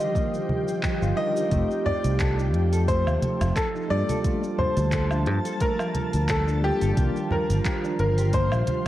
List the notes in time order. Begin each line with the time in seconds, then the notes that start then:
Already playing: D3 D#3 F3 G3 D4 D#4 F4 G4 A#4 C5 D#5
0.00 shaker
0.15 A#3, kick, shaker
0.34 shaker
0.49 high conga
0.68 shaker
0.83 G4, kick, clap, shaker
1.02 G1 F4, shaker
1.15 G3 D4 D#4 F4 A#4 D#5
1.36 D#4, shaker
1.48 F1 A3 C4 D#4, kick, closed hi-hat, shaker
1.53 F4 G4
1.71 shaker
1.85 D5, low conga
2.04 C2, closed hi-hat, shaker
2.20 A4, kick, clap, closed hi-hat, shaker
2.38 D#4, shaker
2.54 F2, closed hi-hat
2.72 A4, closed hi-hat, shaker
2.88 A3 C5, kick, closed hi-hat, shaker
3.07 D#2, high conga, low woodblock, shaker
3.22 closed hi-hat, high conga
3.41 F1, closed hi-hat, high conga, low woodblock, shaker
3.56 A4, kick, clap, closed hi-hat, shaker
3.75 D#4, shaker
3.89 G2 F3 G3 A#3 D4 F4 A4 D5 A5
4.09 A4, closed hi-hat, high conga, shaker
4.21 G3 A3 D4, kick, closed hi-hat, shaker
4.26 F4 A5
4.44 shaker
4.59 C5, high conga, low conga
4.77 D2, closed hi-hat, shaker
4.92 A4, kick, clap, closed hi-hat, shaker
5.11 D4, low woodblock, shaker
5.26 G2, closed hi-hat
5.45 A4, closed hi-hat, shaker
5.60 A3 A#4, kick, closed hi-hat, shaker
5.79 low woodblock, shaker
5.95 closed hi-hat, high conga
6.13 D2, closed hi-hat, shaker
6.29 A4, kick, clap, closed hi-hat, shaker
6.47 D4, shaker
6.61 G3 A#3 D4 F4 G4 A4
6.82 G1 A4, closed hi-hat, shaker
6.94 C2 D#3 F3 G3 A#3 D4 F4 C5, kick, closed hi-hat, shaker
6.99 F4 A#4
7.17 shaker
7.31 A#4, low conga
7.50 G1, closed hi-hat, shaker
7.65 G4, kick, clap, closed hi-hat, shaker
7.84 D4, shaker
7.99 G1 A#4, closed hi-hat
8.18 G4, closed hi-hat, shaker
8.33 A#3 C5, kick, closed hi-hat, shaker
8.52 A#1, high conga, low woodblock, shaker
8.67 closed hi-hat, high conga